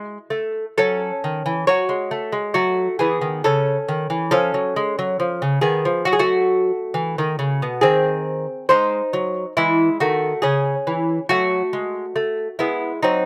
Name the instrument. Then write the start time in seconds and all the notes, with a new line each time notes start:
lute
Already playing: G#3 E4
0.30 A3
0.78 F#3 C#4 A4
1.24 D#3
1.46 E3
1.67 F#3 F#4 C#5
1.89 G#3
2.11 A3
2.32 G#3
2.54 F#3 A3 F#4
2.99 E3 B3 G#4
3.21 D#3
3.44 C#3 C#4 A4
3.89 D#3
4.10 E3
4.31 F3 C#4 A4
4.54 F#3
4.76 G#3
4.99 F#3
5.20 F3
5.42 C#3
5.61 D#3 B3 G#4
5.85 F3
6.05 F#3 F#4
6.13 G#4
6.19 A3 F#4
6.94 E3
7.18 D#3
7.39 C#3
7.62 B2
7.81 D#3 C4 G#4
8.69 G#3 D#4 C5
9.13 F#3
9.57 E3 G#3 E4
10.00 D#3 A3 F#4
10.42 C#3 C#4 G#4
10.87 E3
11.29 F#3 A3 F#4
11.73 G#3
12.16 A3
12.59 G#3 B3 E4
13.02 F#3 C4 D#4